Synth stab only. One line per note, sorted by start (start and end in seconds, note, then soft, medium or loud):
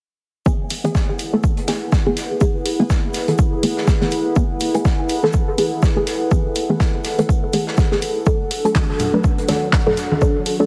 0.46 0.60 E3 medium
0.46 0.60 A3 medium
0.46 0.60 B3 medium
0.46 0.61 G#4 medium
0.84 0.95 E3 medium
0.84 0.95 A3 medium
0.84 0.95 B3 medium
0.84 0.96 G#4 loud
1.33 1.44 E3 medium
1.33 1.44 A3 medium
1.33 1.44 B3 medium
1.33 1.44 A4 loud
1.68 1.82 E3 medium
1.68 1.82 A3 medium
1.68 1.82 B3 medium
1.68 1.83 G#4 medium
2.06 2.17 E3 medium
2.06 2.17 A3 medium
2.06 2.17 B3 medium
2.06 2.17 G#4 medium
2.41 2.55 E3 medium
2.41 2.55 A3 medium
2.41 2.56 B3 medium
2.41 2.56 G#4 medium
2.79 2.90 E3 medium
2.79 2.90 A3 medium
2.79 2.91 B3 medium
2.79 2.91 G#4 loud
3.28 3.39 E3 medium
3.28 3.39 A3 medium
3.28 3.39 B3 medium
3.28 3.39 A4 loud
3.63 3.77 E3 medium
3.63 3.77 A3 medium
3.63 3.78 B3 medium
3.63 3.78 G#4 medium
4.01 4.12 E3 medium
4.01 4.12 A3 medium
4.01 4.13 B3 medium
4.01 4.13 G#4 medium
4.36 4.50 E3 medium
4.36 4.51 A3 medium
4.36 4.51 B3 medium
4.36 4.51 G#4 loud
4.74 4.85 E3 medium
4.74 4.86 A3 medium
4.74 4.86 B3 medium
4.74 4.86 G#4 loud
5.23 5.34 E3 medium
5.23 5.34 A3 medium
5.23 5.34 B3 medium
5.23 5.35 A4 loud
5.58 5.72 E3 medium
5.58 5.73 A3 medium
5.58 5.73 B3 medium
5.58 5.73 G#4 medium
5.96 6.07 E3 medium
5.96 6.08 A3 medium
5.96 6.08 B3 medium
5.96 6.08 G#4 medium
6.31 6.46 E3 medium
6.31 6.46 A3 medium
6.31 6.46 B3 medium
6.31 6.46 G#4 medium
6.69 6.81 E3 medium
6.69 6.81 A3 medium
6.69 6.81 B3 medium
6.69 6.81 G#4 loud
7.18 7.29 E3 medium
7.18 7.29 A3 medium
7.18 7.30 B3 medium
7.18 7.30 A4 loud
7.53 7.68 E3 medium
7.53 7.68 A3 medium
7.53 7.68 B3 medium
7.53 7.68 G#4 medium
7.91 8.03 E3 medium
7.91 8.03 A3 medium
7.91 8.03 B3 medium
7.91 8.03 G#4 medium
8.26 8.41 F#3 medium
8.26 8.41 A3 medium
8.26 8.41 D4 medium
8.26 8.41 A4 loud
8.65 8.76 F#3 medium
8.65 8.76 A3 medium
8.65 8.76 D4 medium
8.65 8.76 A4 loud
9.13 9.24 F#3 medium
9.13 9.25 A3 medium
9.13 9.25 D4 medium
9.13 9.25 B4 loud
9.48 9.63 F#3 medium
9.48 9.63 A3 medium
9.48 9.63 D4 medium
9.48 9.63 A4 medium
9.86 9.98 F#3 medium
9.86 9.98 A3 medium
9.86 9.98 D4 medium
9.86 9.98 A4 loud
10.21 10.36 F#3 medium
10.21 10.36 A3 medium
10.21 10.36 D4 medium
10.21 10.36 A4 loud
10.60 10.66 F#3 medium
10.60 10.66 A3 medium
10.60 10.66 D4 medium
10.60 10.66 A4 loud